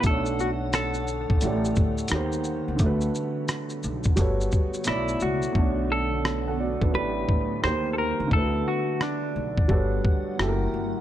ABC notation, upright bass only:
X:1
M:4/4
L:1/16
Q:"Swing 16ths" 1/4=87
K:Bm
V:1 name="Upright bass" clef=bass
B,,,6- B,,, B,,, A,,,2 D,,2 ^D,,3 C,, | D,,2 z4 B,,,2 G,,,2 z2 B,,,2 C,, z | B,,,6- B,,, B,,, A,,,2 D,,2 ^D,,3 C,, | D,,2 z4 B,,,2 G,,,2 z2 F,,,2 G,,, z |]